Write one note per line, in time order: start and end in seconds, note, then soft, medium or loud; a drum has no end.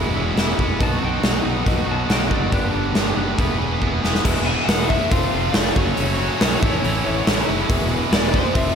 0.00 0.13 E1 medium
0.00 0.15 E2 medium
0.00 0.16 E2 medium
0.00 0.15 B2 medium
0.00 0.15 E3 medium
0.00 0.16 E3 medium
0.00 0.35 F#3 medium
0.00 0.15 G#3 medium
0.00 0.15 B3 medium
0.00 0.13 E4 medium
0.00 0.14 E4 medium
0.00 0.63 F#4 medium
0.00 0.64 G#4 medium
0.00 0.63 E5 medium
0.14 0.34 E1 medium
0.14 0.60 E2 medium
0.14 0.60 B2 medium
0.14 0.36 E3 medium
0.14 0.36 G#3 medium
0.14 0.38 B3 medium
0.14 0.38 E4 medium
0.36 0.55 E1 medium
0.36 0.60 E3 medium
0.36 0.59 F#3 medium
0.36 0.58 G#3 medium
0.36 0.58 B3 medium
0.36 0.57 E4 medium
0.36 snare medium
0.36 open hi-hat soft
0.58 0.77 E1 medium
0.58 0.79 E3 medium
0.58 0.80 G#3 medium
0.58 0.80 B3 medium
0.58 0.79 E4 medium
0.58 kick medium
0.63 0.79 F#3 soft
0.79 0.99 B1 medium
0.79 1.23 B2 medium
0.79 1.20 F#3 medium
0.79 1.50 F#3 medium
0.79 1.04 B3 medium
0.79 1.01 D#4 medium
0.79 1.00 F#4 medium
0.79 1.50 B4 medium
0.79 1.50 D#5 medium
0.79 kick medium
0.79 open hi-hat soft
0.83 1.03 A5 medium
1.01 1.21 B1 medium
1.01 1.22 B3 medium
1.01 1.22 D#4 medium
1.01 1.23 F#4 medium
1.01 1.87 G5 medium
1.21 1.42 B1 medium
1.21 1.44 F#3 medium
1.21 1.45 B3 medium
1.21 1.43 D#4 medium
1.21 1.42 F#4 medium
1.21 snare loud
1.21 open hi-hat soft
1.43 1.64 B1 medium
1.43 1.87 B2 medium
1.43 1.64 F#3 medium
1.43 1.67 B3 medium
1.43 1.66 D#4 medium
1.43 1.67 F#4 medium
1.66 1.85 B1 medium
1.66 1.87 F#3 medium
1.66 1.87 B3 medium
1.66 1.86 D#4 medium
1.66 2.36 F#4 medium
1.66 1.85 F#4 medium
1.66 2.37 B4 medium
1.66 2.37 D#5 medium
1.66 kick medium
1.66 open hi-hat soft
1.86 2.06 B1 medium
1.86 2.32 B2 medium
1.86 2.06 F#3 medium
1.86 2.08 B3 medium
1.86 2.08 D#4 medium
1.86 2.09 F#4 medium
1.91 2.11 A5 medium
2.07 2.28 B1 medium
2.07 2.51 B2 medium
2.07 2.51 F#3 medium
2.07 2.31 B3 medium
2.07 2.29 D#4 medium
2.07 2.27 F#4 medium
2.07 snare medium
2.07 open hi-hat soft
2.12 2.32 G5 medium
2.28 2.50 F#1 medium
2.28 2.52 B3 soft
2.28 2.51 D#4 medium
2.28 2.50 F#4 medium
2.28 kick medium
2.34 2.54 D5 medium
2.50 2.71 G1 medium
2.50 2.95 G2 medium
2.50 2.95 D3 medium
2.50 2.74 G3 medium
2.50 2.73 B3 medium
2.50 2.72 D4 medium
2.50 3.21 G4 medium
2.50 2.71 G4 medium
2.50 3.22 B4 medium
2.50 3.22 D5 medium
2.50 kick medium
2.50 open hi-hat soft
2.54 3.79 B4 medium
2.72 2.93 G1 medium
2.72 2.92 G3 soft
2.72 2.93 B3 medium
2.72 2.94 D4 medium
2.72 2.95 G4 medium
2.93 3.14 G1 medium
2.93 3.16 G3 medium
2.93 3.14 B3 medium
2.93 3.14 D4 medium
2.93 3.14 G4 medium
2.93 snare loud
2.93 open hi-hat soft
3.15 3.36 F#1 medium
3.15 3.37 G2 medium
3.15 3.37 D3 medium
3.15 3.38 G3 medium
3.15 3.37 B3 medium
3.15 3.37 D4 medium
3.15 3.37 G4 medium
3.37 3.57 E1 medium
3.37 3.60 E2 medium
3.37 3.60 B2 medium
3.37 3.59 E3 medium
3.37 3.59 B3 medium
3.37 3.58 E4 medium
3.37 4.08 G#4 medium
3.37 3.58 G#4 medium
3.37 4.08 B4 medium
3.37 4.08 E5 medium
3.37 kick medium
3.37 open hi-hat soft
3.59 3.79 E1 medium
3.59 4.04 E2 medium
3.59 4.04 B2 medium
3.59 3.79 E3 medium
3.59 3.81 B3 medium
3.59 3.82 E4 medium
3.59 3.82 G#4 medium
3.80 4.00 E1 medium
3.80 4.04 E3 medium
3.80 4.03 B3 medium
3.80 4.02 E4 medium
3.80 4.01 G#4 medium
3.80 kick soft
4.02 4.22 E1 medium
4.02 4.22 E2 medium
4.02 4.22 B2 medium
4.02 4.22 E3 medium
4.02 4.23 B3 medium
4.02 4.24 E4 medium
4.02 4.23 G#4 medium
4.02 snare medium
4.15 snare medium
4.23 4.55 E1 medium
4.23 4.44 E2 medium
4.23 4.45 B2 medium
4.23 4.45 E3 loud
4.23 4.46 G#3 medium
4.23 4.47 B3 medium
4.23 4.47 E4 medium
4.23 4.94 G#4 medium
4.23 4.94 B4 medium
4.23 4.94 E5 medium
4.23 kick loud
4.23 crash loud
4.28 4.48 G#4 medium
4.45 4.66 E2 medium
4.45 4.67 B2 medium
4.45 4.67 E3 medium
4.45 4.68 G#3 medium
4.45 4.68 B3 medium
4.45 4.68 E4 medium
4.45 4.70 G#4 medium
4.45 4.65 G#5 medium
4.51 4.68 E2 soft
4.51 4.69 B2 medium
4.65 4.98 E1 medium
4.65 4.88 E2 medium
4.65 4.88 B2 medium
4.65 4.88 E3 medium
4.65 4.89 G#3 medium
4.65 4.89 B3 medium
4.65 4.89 F#5 medium
4.65 snare loud
4.65 open hi-hat medium
4.70 4.90 E4 medium
4.70 4.88 G#4 medium
4.88 5.10 E2 medium
4.88 5.10 B2 medium
4.88 5.10 E3 medium
4.88 5.10 G#3 medium
4.88 5.10 B3 loud
4.88 5.11 E4 medium
4.88 5.11 G#4 medium
4.88 5.09 E5 medium
4.88 kick medium
5.10 5.27 F1 medium
5.10 5.31 F2 medium
5.10 5.32 C3 medium
5.10 5.32 F3 medium
5.10 5.32 A3 loud
5.10 5.33 C4 loud
5.10 5.29 F4 medium
5.10 5.34 F4 medium
5.10 5.29 A4 medium
5.10 5.29 C5 medium
5.10 5.55 F5 loud
5.10 kick loud
5.10 open hi-hat medium
5.32 5.48 F1 medium
5.32 5.53 F2 medium
5.32 5.54 C3 medium
5.32 5.55 F3 medium
5.32 5.55 A3 medium
5.32 5.55 C4 medium
5.32 5.50 F4 medium
5.32 5.56 F4 medium
5.32 5.50 A4 medium
5.32 5.50 C5 medium
5.37 5.78 F3 soft
5.53 5.70 F1 medium
5.53 5.75 F2 medium
5.53 5.75 C3 loud
5.53 5.75 F3 medium
5.53 5.76 A3 loud
5.53 5.76 C4 loud
5.53 5.76 F4 medium
5.53 5.74 A4 medium
5.53 5.76 B4 medium
5.53 5.71 D5 medium
5.53 snare loud
5.53 open hi-hat medium
5.57 5.76 F4 loud
5.66 snare soft
5.71 6.14 C#5 medium
5.76 5.91 F#1 medium
5.76 5.96 F#2 loud
5.76 5.97 C#3 loud
5.76 5.97 F#3 medium
5.76 5.98 A3 loud
5.76 5.98 C#4 loud
5.76 6.45 F#4 medium
5.76 5.99 F#4 loud
5.76 6.44 A4 medium
5.76 6.45 C#5 medium
5.76 kick medium
5.97 6.28 F#1 medium
5.97 6.16 F#2 medium
5.97 6.17 C#3 medium
5.97 6.18 F#3 medium
5.97 6.18 A3 medium
5.97 6.18 C#4 loud
5.97 6.19 F#4 loud
5.97 open hi-hat soft
6.15 6.38 F#2 medium
6.15 6.38 C#3 medium
6.15 6.39 F#3 medium
6.15 7.42 C#5 medium
6.20 6.39 A3 medium
6.20 6.40 C#4 medium
6.20 6.40 F#4 medium
6.39 6.56 B1 medium
6.39 6.60 F#2 medium
6.39 6.59 C#3 medium
6.39 6.60 F#3 medium
6.39 6.60 A3 medium
6.39 6.60 C#4 medium
6.39 6.61 F#4 medium
6.39 snare loud
6.39 open hi-hat medium
6.60 6.77 A1 medium
6.60 6.80 A2 medium
6.60 6.82 E3 medium
6.60 6.82 A3 medium
6.60 6.83 C#4 loud
6.60 6.83 E4 loud
6.60 6.96 E4 medium
6.60 6.97 A4 medium
6.60 6.97 C#5 medium
6.60 kick loud
6.66 6.85 A3 soft
6.82 6.99 A1 loud
6.82 7.02 A2 medium
6.82 7.04 E3 medium
6.82 7.04 A3 medium
6.82 7.05 C#4 medium
6.82 7.05 E4 medium
6.82 open hi-hat medium
6.89 7.04 E4 medium
7.04 7.21 A1 medium
7.04 7.25 A2 medium
7.04 7.25 E3 medium
7.04 7.26 A3 medium
7.04 7.26 C#4 medium
7.04 7.22 E4 medium
7.04 7.27 E4 medium
7.04 7.22 A4 medium
7.04 7.22 C#5 loud
7.04 7.15 A5 medium
7.17 7.26 F#5 medium
7.26 7.42 A1 loud
7.26 7.46 A2 loud
7.26 7.47 E3 loud
7.26 7.48 A3 loud
7.26 7.47 C#4 loud
7.26 7.61 E4 medium
7.26 7.48 E4 loud
7.26 7.61 A4 medium
7.26 7.61 B4 loud
7.26 7.66 E5 medium
7.26 snare loud
7.26 open hi-hat medium
7.38 snare soft
7.47 7.63 F#1 medium
7.47 7.67 A2 medium
7.47 7.68 E3 loud
7.47 7.68 A3 medium
7.47 7.68 C#4 medium
7.47 7.68 E4 medium
7.68 7.99 E1 medium
7.68 7.88 E2 medium
7.68 7.89 B2 medium
7.68 7.90 E3 loud
7.68 7.90 G#3 loud
7.68 7.91 B3 loud
7.68 8.38 E4 medium
7.68 7.91 E4 loud
7.68 8.38 G#4 medium
7.68 8.38 B4 loud
7.68 kick medium
7.68 open hi-hat medium
7.90 8.10 E2 medium
7.90 8.11 B2 medium
7.90 8.11 E3 medium
7.90 8.11 G#3 medium
7.90 8.12 B3 medium
7.90 8.12 E4 medium
7.94 8.11 E2 medium
8.11 8.42 E1 medium
8.11 8.31 E2 medium
8.11 8.32 B2 medium
8.11 8.32 E3 medium
8.11 8.32 G#3 medium
8.11 8.33 B3 medium
8.11 8.34 E4 medium
8.11 8.35 D5 medium
8.11 snare loud
8.11 open hi-hat medium
8.32 8.53 E2 medium
8.32 8.53 B2 medium
8.32 8.53 E3 medium
8.32 8.54 G#3 loud
8.32 8.54 B3 loud
8.32 8.54 E4 loud
8.32 8.57 C5 medium
8.32 kick medium
8.53 8.70 F1 medium
8.53 8.73 F2 loud
8.53 8.74 C3 medium
8.53 8.74 F3 loud
8.53 8.74 A3 loud
8.53 8.75 C4 loud
8.53 8.75 F4 loud
8.53 8.73 F4 medium
8.53 8.72 A4 medium
8.53 8.73 C5 medium
8.53 8.75 E5 medium
8.53 kick loud
8.53 open hi-hat medium